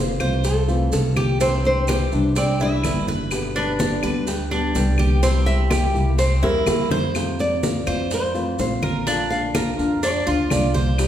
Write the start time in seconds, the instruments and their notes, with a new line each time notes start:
Already playing: upright bass F1, nylon-string guitar E3 A3 C4 F4 C5
0.20 upright bass C2, nylon-string guitar E3 A3 C4 F4, cuban tres C5, high conga, claves, maracas
0.44 nylon-string guitar A4, muted nylon-string guitar stroke, high bongo, high conga, maracas
0.68 nylon-string guitar E3 A3 C4 F4, high bongo, high conga, maracas
0.92 upright bass C2, nylon-string guitar A3 C4 F4 A4, high bongo, low bongo, high conga, maracas
1.16 cuban tres G4, high bongo, high conga, claves, maracas
1.40 nylon-string guitar C3 E3 G3 D4 E4 C5, cuban tres C4, high bongo, maracas
1.65 nylon-string guitar C5, high bongo, high conga, maracas
1.88 nylon-string guitar E3 G3 D4 E4, cuban tres G4, high bongo, high conga, claves, maracas
2.12 upright bass C2, nylon-string guitar E3 G3 D4 E4, high conga, maracas
2.36 cuban tres C4, nylon-string guitar D5, muted nylon-string guitar stroke, high bongo, high conga, maracas
2.59 nylon-string guitar E3 G3 D4 E4 E5, cuban tres E4, high bongo, high conga, maracas
2.84 upright bass G1, nylon-string guitar E3 G3 D4 E4, high bongo, low bongo, high conga, claves, maracas
3.08 cuban tres B4, high bongo, high conga, maracas
3.31 nylon-string guitar B2 D3 G3 B3 G4, high bongo, high conga, claves, maracas
3.56 cuban tres D4, nylon-string guitar B4, high bongo, high conga, maracas
3.79 nylon-string guitar D3 G3 B3 G4, high bongo, high conga, maracas
4.03 upright bass D2, nylon-string guitar D3 G3 B3 G4, cuban tres B4, high conga, claves, maracas
4.27 nylon-string guitar G4, muted nylon-string guitar stroke, high bongo, high conga, maracas
4.51 nylon-string guitar D3 G3 B3 G4, cuban tres D4, high bongo, high conga, maracas
4.75 upright bass C2, nylon-string guitar D3 G3 B3 G4, high bongo, low bongo, high conga, maracas
4.98 cuban tres G4, high bongo, high conga, claves, maracas
5.22 nylon-string guitar C3 G3 A#3 E4 G4 C5, cuban tres C4, high bongo, high conga, maracas
5.46 nylon-string guitar E5, high bongo, high conga, maracas
5.70 nylon-string guitar G3 A#3 E4 G4, cuban tres G4, high bongo, high conga, claves, maracas
5.94 upright bass C2, nylon-string guitar G3 A#3 E4 G4, high conga, maracas
6.18 cuban tres C4, nylon-string guitar C5, muted nylon-string guitar stroke, high bongo, high conga, maracas
6.42 upright bass E2, nylon-string guitar G3 A#3 E4 G4 A#4, cuban tres E4, high bongo, high conga, maracas
6.66 upright bass F2, nylon-string guitar G3 A#3 E4 G4, high bongo, high conga, claves, maracas
6.91 cuban tres C5, low bongo, high conga, maracas
7.14 nylon-string guitar C3 A3 C4 F4, high bongo, high conga, claves, maracas
7.39 nylon-string guitar D5, high bongo, high conga, maracas
7.62 nylon-string guitar E3 A3 C4 F4, high bongo, high conga, maracas
7.87 upright bass F2, nylon-string guitar E3 A3 C4 F4, cuban tres C5, high conga, claves, maracas
8.11 nylon-string guitar C5, muted nylon-string guitar stroke, high bongo, high conga, maracas
8.34 nylon-string guitar E3 A3 C4 F4, high bongo, high conga, maracas
8.59 upright bass A#1, nylon-string guitar A3 C4 F4 C5, high bongo, low bongo, high conga, maracas
8.82 cuban tres A#4, high bongo, high conga, claves, maracas
9.06 nylon-string guitar D3 A#3 D4 F4, cuban tres D4, high bongo, high conga, maracas
9.30 nylon-string guitar F5, high bongo, high conga, maracas
9.54 nylon-string guitar D3 A#3 D4 F4, cuban tres A#4, high bongo, high conga, claves, maracas
9.78 upright bass F2, nylon-string guitar A#3 D4 F4, high conga, maracas
10.02 cuban tres D4, nylon-string guitar D5, muted nylon-string guitar stroke, high bongo, high conga, maracas
10.26 upright bass D2, nylon-string guitar A#3 D4 F4, cuban tres F4, high bongo, high conga, maracas
10.50 upright bass C2, nylon-string guitar D3 A#3 D4 F4 D5, high bongo, low bongo, high conga, claves, maracas
10.74 cuban tres C5, high bongo, high conga, maracas
10.98 nylon-string guitar C3 G3 A#3 E4 G4, high bongo, high conga, claves, maracas